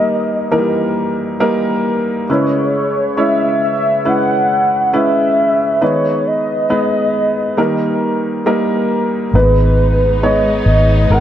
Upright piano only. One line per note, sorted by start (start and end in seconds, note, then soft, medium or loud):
0.00 2.30 D#3 soft
0.00 0.58 G3 medium
0.00 0.52 A#3 medium
0.00 0.52 D#4 soft
0.00 0.52 A#4 medium
0.51 0.58 E3 soft
0.51 1.36 A#3 soft
0.51 1.35 D#4 medium
0.51 1.36 A#4 medium
0.58 1.39 G3 medium
1.40 2.24 G3 medium
1.40 2.24 A#3 medium
1.40 2.24 D#4 medium
1.40 2.24 A#4 medium
2.29 3.57 C#3 soft
2.29 3.13 G#3 soft
2.29 3.13 C#4 soft
2.29 3.13 E4 soft
2.29 3.13 B4 medium
3.17 4.01 G#3 medium
3.17 4.01 C#4 medium
3.17 4.01 E4 medium
3.17 4.01 C#5 medium
4.05 4.89 G#3 medium
4.05 4.89 C#4 soft
4.05 4.89 E4 soft
4.05 4.89 B4 medium
4.93 5.77 G#3 medium
4.93 5.77 C#4 medium
4.93 5.77 E4 medium
4.93 5.77 B4 medium
5.81 7.10 D#3 soft
5.81 6.65 G#3 soft
5.81 6.65 B3 soft
5.81 6.65 D#4 soft
5.81 6.65 B4 medium
6.70 7.53 G#3 medium
6.70 7.54 B3 medium
6.70 7.54 D#4 medium
6.70 7.54 B4 medium
7.57 8.86 D#3 soft
7.57 8.41 G3 medium
7.57 8.41 A#3 soft
7.57 8.42 D#4 medium
7.57 8.42 A#4 medium
8.46 9.30 G3 medium
8.46 9.30 A#3 medium
8.46 9.30 D#4 medium
8.46 9.30 A#4 medium
9.35 10.63 G#2 soft
9.35 10.18 G#3 soft
9.35 10.18 B3 soft
9.35 10.18 D#4 soft
9.35 10.19 B4 medium
10.23 11.06 G#3 medium
10.23 11.07 B3 medium
10.23 11.07 D#4 medium
10.23 11.07 C#5 medium
11.11 11.20 G#3 medium
11.11 11.20 B3 soft
11.11 11.20 D#4 soft
11.11 11.20 A#4 medium